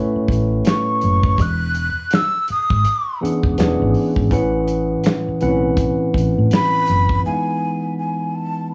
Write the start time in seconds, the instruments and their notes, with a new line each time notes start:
Already playing: tine electric piano A2 A3 C#4 B4 C#5 F#5
0.16 muted fingered electric bass stroke
0.28 fingered electric bass A1, kick, closed hi-hat
0.65 flute C#6, snare, clap, closed hi-hat
1.01 fingered electric bass F#1, closed hi-hat
1.23 kick
1.38 fingered electric bass E1, flute F#6, kick, closed hi-hat
1.75 closed hi-hat
2.11 flute E6, snare, clap, closed hi-hat
2.48 flute D#6, muted fingered electric bass stroke, closed hi-hat
2.70 fingered electric bass G#1, kick
2.85 closed hi-hat
3.21 tine electric piano E3 B3 C#4 D4 G#4 F#5, muted fingered electric bass stroke, closed hi-hat
3.43 fingered electric bass E1, kick
3.58 fingered electric bass E1, tine electric piano E3 B3 C#4 D4 G#4 F#5, snare, clap, closed hi-hat
3.82 fingered electric bass G#1
3.94 open hi-hat
4.16 fingered electric bass G#1, kick
4.31 fingered electric bass A1, tine electric piano A2 E3 C#4 B4 F#5, kick, closed hi-hat
4.68 closed hi-hat
5.04 snare, clap, closed hi-hat
5.28 muted fingered electric bass stroke
5.41 fingered electric bass B1, tine electric piano A2 E3 C4 B4 F#5, closed hi-hat
5.48 tine electric piano C#4
5.77 kick, closed hi-hat
6.14 fingered electric bass A1, kick, closed hi-hat
6.38 fingered electric bass A2
6.51 flute B5, snare, clap, closed hi-hat
6.87 fingered electric bass F#1, closed hi-hat
7.09 kick
7.23 tine electric piano E3 G#3 B3 D#4 F5, flute G#5
7.33 tine electric piano F#5
7.99 flute G#5
8.35 flute A5